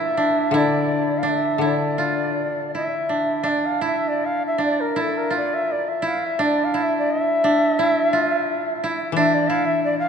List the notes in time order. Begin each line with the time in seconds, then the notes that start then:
Already playing: A#2 D4 E4 E5
0.17 D4
0.51 D3 E4
0.57 D5
1.18 F5
1.23 D4
1.28 E5
1.58 D3 E4
1.64 D5
1.98 F4
2.75 E4 E5
3.09 D4
3.43 D4
3.48 D5
3.65 F5
3.81 E4
3.86 E5
4.08 D5
4.25 F5
4.47 E5
4.58 D4
4.64 D5
4.80 A#4
4.96 E4
5.01 A4
5.17 A#4
5.30 F4
5.37 D5
5.54 E5
5.71 D5
5.88 E5
6.02 E4
6.07 F5
6.25 E5
6.39 D4
6.44 D5
6.64 F5
6.74 E4
6.83 E5
6.98 D5
7.11 E5
7.44 D4
7.79 E4
8.13 F4
8.84 E4
9.12 E3
9.16 D4 E5
9.34 D5
9.48 E4 F5
9.65 E5
9.84 D5
9.99 F5